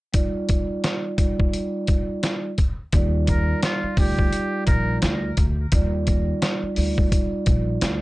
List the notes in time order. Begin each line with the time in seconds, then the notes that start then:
0.13 G3 D#4 F4 D5, kick, closed hi-hat
0.49 kick, closed hi-hat
0.84 snare, closed hi-hat
1.17 G3 D#4 F4 D5, kick, closed hi-hat
1.40 kick
1.53 closed hi-hat
1.87 kick, closed hi-hat
2.23 snare, closed hi-hat
2.58 kick, closed hi-hat
2.92 D#2 G3 D#4 F4 D5, kick, closed hi-hat
3.27 A#4, kick, closed hi-hat
3.63 F4, snare, closed hi-hat
3.84 muted upright bass stroke
3.97 D2 G3 D#4 F4 G4 D5, kick, open hi-hat
4.19 kick
4.33 closed hi-hat
4.67 A#1 A#4, kick, closed hi-hat
5.02 D2, snare, closed hi-hat
5.37 D2, kick, closed hi-hat
5.72 D#2 G3 D#4 F4 D5, kick, closed hi-hat
6.07 kick, closed hi-hat
6.42 snare, closed hi-hat
6.63 muted upright bass stroke
6.75 D2 G3 D#4 F4 D5, open hi-hat
6.98 kick
7.12 kick, closed hi-hat
7.46 A#1, kick, closed hi-hat
7.81 D2, snare, closed hi-hat